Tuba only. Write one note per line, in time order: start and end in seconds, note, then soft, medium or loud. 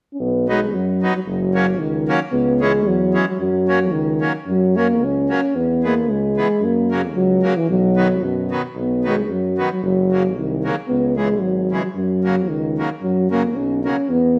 0.20 0.76 B1 medium
0.75 1.09 F#2 medium
1.27 1.82 F#1 medium
1.81 2.15 C#2 medium
2.32 2.87 C#2 medium
2.85 3.20 E2 medium
3.39 3.93 F#2 medium
3.92 4.27 C#2 medium
4.46 5.01 F#2 medium
5.00 5.35 C#2 medium
5.54 6.09 E2 medium
6.08 6.42 C#2 medium
6.60 7.15 F#2 medium
7.14 7.49 C#2 medium
7.68 8.23 B1 medium
8.21 8.56 F#2 medium
8.75 9.31 B1 medium
9.29 9.64 F#2 medium
9.82 10.37 F#1 medium
10.36 10.71 C2 medium
10.89 11.42 C#2 medium
11.41 11.76 G#1 medium
11.95 12.50 F#2 medium
12.49 12.84 C#2 medium
13.02 13.57 F#2 medium
13.55 13.90 B1 medium
14.09 14.39 E2 medium